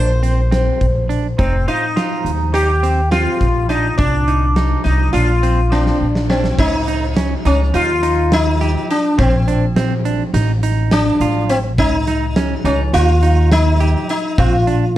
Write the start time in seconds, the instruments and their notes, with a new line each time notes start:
Already playing: upright bass A#1, clean electric guitar D4, sitar C5
0.23 clean electric guitar C4, closed hi-hat
0.51 clean electric guitar C4, snare, closed hi-hat
0.81 upright bass A#1, kick, closed hi-hat
1.09 clean electric guitar D4, closed hi-hat
1.38 upright bass F1, sitar C4, clean electric guitar D#4, kick, closed hi-hat
1.68 sitar D#4, clean electric guitar F4, closed hi-hat
1.96 clean electric guitar F4, snare, closed hi-hat
2.25 upright bass D#2, closed hi-hat
2.54 clean electric guitar D#4, sitar G4, closed hi-hat
2.83 clean electric guitar C4, closed hi-hat
3.11 clean electric guitar C4, sitar F4, snare, closed hi-hat
3.41 upright bass A#1, kick, snare, closed hi-hat
3.69 clean electric guitar D4, sitar D#4, closed hi-hat
3.98 upright bass C2, sitar D4, clean electric guitar D4, kick, closed hi-hat
4.28 clean electric guitar D#4, closed hi-hat
4.56 clean electric guitar D#4, snare, closed hi-hat
4.84 upright bass C2, sitar D#4, snare, closed hi-hat
5.13 upright bass A#1, clean electric guitar D4, sitar F4, closed hi-hat
5.43 clean electric guitar C4, closed hi-hat
5.72 clean electric guitar C4, sitar D4, snare
5.86 snare
6.01 upright bass A#1
6.15 snare
6.30 sitar C4, clean electric guitar D4, snare
6.44 snare
6.58 upright bass C#2, clean electric guitar C#4, sitar D#4, kick, crash
6.88 clean electric guitar D#4, closed hi-hat
7.16 clean electric guitar C#4, snare, closed hi-hat
7.45 upright bass C#2, sitar C#4, clean electric guitar D#4, closed hi-hat
7.74 upright bass D#2, clean electric guitar D#4, sitar F4, closed hi-hat
8.03 clean electric guitar D#4, closed hi-hat
8.32 sitar D#4, snare, closed hi-hat
8.61 clean electric guitar G4, snare, closed hi-hat
8.90 sitar D4, closed hi-hat
9.18 upright bass A#1, clean electric guitar C4, sitar C4, kick, closed hi-hat
9.48 clean electric guitar D4, closed hi-hat
9.76 clean electric guitar C4, snare, closed hi-hat
10.05 clean electric guitar D4, closed hi-hat
10.34 upright bass A1, clean electric guitar D#4, snare, closed hi-hat
10.63 clean electric guitar D#4, closed hi-hat
10.91 sitar D4, snare, closed hi-hat
11.20 upright bass A1, clean electric guitar F4, closed hi-hat
11.49 sitar C4, closed hi-hat
11.78 upright bass C#2, clean electric guitar C#4, sitar D#4, kick, closed hi-hat
12.07 clean electric guitar D#4, snare, closed hi-hat
12.36 clean electric guitar C#4, snare, closed hi-hat
12.64 upright bass C#2, sitar C#4, clean electric guitar D#4, closed hi-hat
12.93 upright bass D#2, clean electric guitar D#4, sitar F4, closed hi-hat
13.23 clean electric guitar D#4, closed hi-hat
13.52 sitar D#4, snare, closed hi-hat
13.80 clean electric guitar G4, closed hi-hat
14.09 sitar D#4, closed hi-hat
14.38 upright bass A#1, clean electric guitar C4, sitar F4, kick, closed hi-hat
14.67 clean electric guitar D4, closed hi-hat